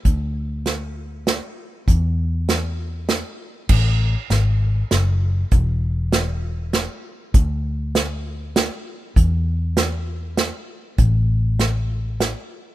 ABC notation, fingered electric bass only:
X:1
M:3/4
L:1/8
Q:1/4=99
K:F#m
V:1 name="Fingered electric bass" clef=bass
D,,6 | E,,6 | A,,,2 G,,,2 F,,,2 | E,,,6 |
D,,6 | E,,6 | A,,,6 |]